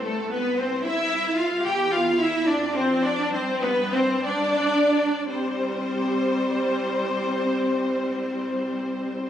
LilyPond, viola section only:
\new Staff \with { instrumentName = "Viola section" } { \time 6/8 \key c \major \tempo 4. = 62 a8 b8 c'8 e'4 f'8 | g'8 f'8 e'8 d'8 c'8 d'8 | c'8 b8 c'8 d'4. | g2.~ |
g2. | }